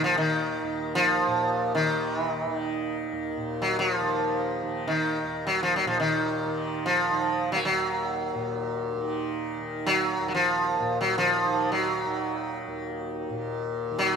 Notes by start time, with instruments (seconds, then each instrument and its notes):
Already playing: tanpura D#2 A#2 D#3
0.02 tanpura D#3, sitar F3
0.18 sitar D#3
0.63 tanpura D#2
0.95 sitar F3
1.27 tanpura A#2
1.75 sitar D#3
1.88 tanpura D#3
2.18 sitar E3
2.30 sitar D#3
2.43 sitar E3
2.47 tanpura D#3
2.55 sitar D#3
3.12 tanpura D#2
3.37 tanpura A#2
3.62 sitar F#3
3.79 sitar F#3
3.91 sitar F3
4.01 tanpura D#3
4.63 tanpura D#3
4.88 sitar D#3
5.24 tanpura D#2
5.47 sitar F#3
5.63 sitar F3
5.76 sitar F#3
5.86 tanpura A#2, sitar F3
6.00 sitar D#3
6.46 tanpura D#3
6.86 sitar F3
7.11 tanpura D#3
7.52 sitar F#3 A#3
7.65 sitar F#3
7.71 tanpura D#2
8.35 tanpura A#2
8.96 tanpura D#3
9.59 tanpura D#3
9.87 sitar F#3
10.20 tanpura D#2
10.28 sitar F#3
10.35 sitar F3
10.80 tanpura A#2
11.01 sitar F#3
11.18 sitar F3
11.44 tanpura D#3
11.72 sitar F#3
12.06 tanpura D#3
12.67 tanpura D#2
13.30 tanpura A#2
13.91 tanpura D#3
13.98 sitar F#3